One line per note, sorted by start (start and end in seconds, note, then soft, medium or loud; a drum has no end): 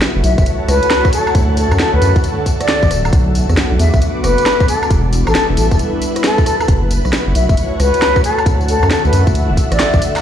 0.00 3.09 A3 medium
0.00 0.29 E4 medium
0.00 3.09 E4 medium
0.00 1.99 F#4 loud
0.00 6.64 F#4 loud
0.00 0.29 B4 medium
0.00 1.96 C#5 medium
0.00 3.76 F#5 medium
0.00 2.07 A5 medium
0.00 snare loud
0.00 closed hi-hat medium
0.00 tambourine soft
0.16 0.23 F#1 loud
0.24 0.36 B1 medium
0.24 0.33 E5 medium
0.24 open hi-hat loud
0.24 tambourine medium
0.38 0.45 F#1 medium
0.38 0.43 E5 medium
0.38 kick loud
0.38 closed hi-hat soft
0.38 tambourine soft
0.46 closed hi-hat medium
0.46 tambourine soft
0.68 0.80 C#2 medium
0.68 1.11 B4 medium
0.68 cross-stick medium
0.68 open hi-hat loud
0.68 tambourine medium
0.83 closed hi-hat medium
0.83 tambourine soft
0.91 snare loud
0.91 closed hi-hat medium
0.91 tambourine soft
0.91 high woodblock medium
1.05 kick loud
1.05 cross-stick medium
1.05 tambourine soft
1.13 1.32 A4 loud
1.13 open hi-hat loud
1.13 tambourine medium
1.27 tambourine soft
1.27 high woodblock medium
1.35 1.68 D2 loud
1.35 3.76 D3 medium
1.35 kick loud
1.35 closed hi-hat medium
1.35 tambourine soft
1.46 3.76 A4 loud
1.57 1.77 A4 medium
1.57 open hi-hat loud
1.57 tambourine medium
1.71 1.78 F#2 medium
1.71 cross-stick medium
1.71 tambourine soft
1.71 high woodblock medium
1.79 1.91 A4 medium
1.79 snare loud
1.79 closed hi-hat medium
1.79 tambourine soft
1.94 2.00 D2 loud
1.94 2.11 B4 medium
2.02 2.14 F#2 medium
2.02 3.74 E5 loud
2.02 open hi-hat loud
2.02 tambourine medium
2.16 2.23 D2 medium
2.16 kick loud
2.16 closed hi-hat soft
2.16 tambourine soft
2.24 closed hi-hat medium
2.24 tambourine soft
2.46 kick medium
2.46 open hi-hat loud
2.46 tambourine medium
2.60 2.90 D5 loud
2.60 cross-stick medium
2.60 closed hi-hat medium
2.60 tambourine soft
2.68 snare loud
2.68 closed hi-hat medium
2.68 tambourine soft
2.83 2.89 A1 medium
2.83 kick loud
2.83 tambourine soft
2.91 3.10 D1 medium
2.91 cross-stick medium
2.91 open hi-hat loud
2.91 tambourine medium
3.05 tambourine soft
3.05 high woodblock medium
3.13 3.46 B1 loud
3.13 4.67 A3 medium
3.13 5.51 B3 medium
3.13 4.67 D4 medium
3.13 kick loud
3.13 closed hi-hat medium
3.13 tambourine soft
3.29 4.68 F#4 medium
3.35 open hi-hat loud
3.35 tambourine medium
3.46 3.56 E2 medium
3.46 5.28 D6 medium
3.46 cross-stick medium
3.46 tambourine soft
3.57 snare loud
3.57 closed hi-hat medium
3.57 tambourine soft
3.71 3.78 B1 loud
3.79 3.92 E2 medium
3.79 3.89 E5 medium
3.79 open hi-hat loud
3.79 tambourine medium
3.94 4.00 B1 medium
3.94 3.99 E5 medium
3.94 kick loud
3.94 closed hi-hat soft
3.94 tambourine soft
4.02 closed hi-hat medium
4.02 tambourine soft
4.24 4.36 F#1 medium
4.24 4.67 B4 loud
4.24 cross-stick medium
4.24 open hi-hat loud
4.24 tambourine medium
4.38 closed hi-hat medium
4.38 tambourine soft
4.46 snare loud
4.46 closed hi-hat medium
4.46 tambourine soft
4.46 high woodblock medium
4.60 kick loud
4.60 cross-stick medium
4.60 tambourine soft
4.68 6.66 G3 medium
4.68 6.66 B3 medium
4.68 6.66 D4 medium
4.68 7.41 E4 medium
4.68 4.88 A4 medium
4.68 open hi-hat loud
4.68 tambourine medium
4.83 tambourine soft
4.83 high woodblock medium
4.90 5.24 E1 loud
4.90 kick loud
4.90 closed hi-hat medium
4.90 tambourine soft
5.00 7.41 B4 medium
5.13 open hi-hat loud
5.13 tambourine medium
5.27 5.34 A1 medium
5.27 5.45 A4 medium
5.27 cross-stick medium
5.27 tambourine soft
5.27 high woodblock medium
5.35 snare loud
5.35 closed hi-hat medium
5.35 tambourine soft
5.49 5.56 E1 loud
5.57 5.69 A1 medium
5.57 5.66 A4 medium
5.57 open hi-hat loud
5.57 tambourine medium
5.71 5.78 E1 medium
5.71 5.77 A4 medium
5.71 kick loud
5.71 closed hi-hat soft
5.71 tambourine soft
5.79 closed hi-hat medium
5.79 tambourine soft
6.02 open hi-hat loud
6.02 tambourine medium
6.16 cross-stick medium
6.16 closed hi-hat medium
6.16 tambourine soft
6.24 6.44 A4 loud
6.24 snare loud
6.24 closed hi-hat medium
6.24 tambourine soft
6.38 kick loud
6.38 tambourine soft
6.46 6.55 A4 medium
6.46 cross-stick soft
6.46 open hi-hat loud
6.46 tambourine medium
6.60 6.65 A4 medium
6.60 tambourine soft
6.60 high woodblock medium
6.68 7.01 F#1 loud
6.68 10.20 A3 medium
6.68 8.44 E4 medium
6.68 9.18 F#4 medium
6.68 10.20 F#4 loud
6.68 kick loud
6.68 closed hi-hat medium
6.68 tambourine soft
6.91 open hi-hat loud
6.91 tambourine medium
6.99 10.22 F#5 medium
7.04 7.12 B1 medium
7.04 9.18 C#5 loud
7.04 cross-stick medium
7.04 tambourine soft
7.13 snare loud
7.13 closed hi-hat medium
7.13 tambourine soft
7.27 7.34 F#1 loud
7.35 7.47 B1 medium
7.35 7.44 E5 medium
7.35 open hi-hat loud
7.35 tambourine medium
7.49 7.56 F#1 medium
7.49 7.54 E5 medium
7.49 9.18 A5 medium
7.49 kick loud
7.49 closed hi-hat soft
7.49 tambourine soft
7.57 closed hi-hat medium
7.57 tambourine soft
7.80 7.92 C#2 loud
7.80 8.22 B4 loud
7.80 cross-stick medium
7.80 open hi-hat loud
7.80 tambourine medium
7.94 closed hi-hat medium
7.94 tambourine soft
8.02 snare loud
8.02 closed hi-hat medium
8.02 tambourine soft
8.02 high woodblock medium
8.16 kick loud
8.16 cross-stick medium
8.16 tambourine soft
8.24 8.44 A4 medium
8.24 open hi-hat loud
8.24 tambourine medium
8.38 tambourine soft
8.38 high woodblock medium
8.46 8.79 D2 loud
8.46 10.22 D3 medium
8.46 10.22 E4 medium
8.46 kick loud
8.46 closed hi-hat medium
8.46 tambourine soft
8.58 10.22 A4 medium
8.58 10.22 E5 loud
8.58 tambourine soft
8.68 8.88 A4 medium
8.68 open hi-hat loud
8.68 tambourine medium
8.83 8.89 F#2 medium
8.83 cross-stick medium
8.83 tambourine soft
8.83 high woodblock medium
8.91 9.02 A4 medium
8.91 snare loud
8.91 closed hi-hat medium
8.91 tambourine soft
9.05 9.12 D2 loud
9.05 9.22 B4 loud
9.05 tambourine soft
9.13 9.25 F#2 medium
9.13 open hi-hat loud
9.13 tambourine medium
9.27 9.51 D2 medium
9.27 kick loud
9.27 closed hi-hat soft
9.27 tambourine soft
9.35 closed hi-hat medium
9.35 tambourine soft
9.49 9.56 D1 medium
9.57 kick medium
9.57 open hi-hat loud
9.57 tambourine medium
9.71 9.78 A1 medium
9.71 10.02 D5 medium
9.71 cross-stick medium
9.71 closed hi-hat medium
9.71 tambourine soft
9.80 snare loud
9.80 clap loud
9.80 closed hi-hat medium
9.80 tambourine soft
9.94 10.00 A1 medium
9.94 kick loud
9.94 tambourine soft
10.02 open hi-hat loud
10.02 tambourine medium
10.16 clap medium
10.16 tambourine soft
10.16 high woodblock medium